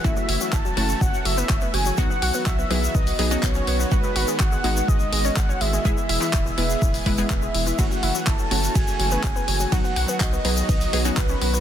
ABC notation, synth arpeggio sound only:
X:1
M:4/4
L:1/16
Q:1/4=124
K:F#dor
V:1 name="Synth arpeggio sound"
E F, E F, E F, F, z F, z F, B, F, B, F, F, | F B, F B, F B, B, z B, z B, C B, C B, B, | F G, F G, F G, G, z G, z G, C G, C G, G, | E E, E E, E E, E, z E, z E, B, E, G, E, E, |
E F, E F, E F, F, z F, z F, B, F, B, F, F, | F B, F B, F B, B, z B, z B, C B, C B, B, |]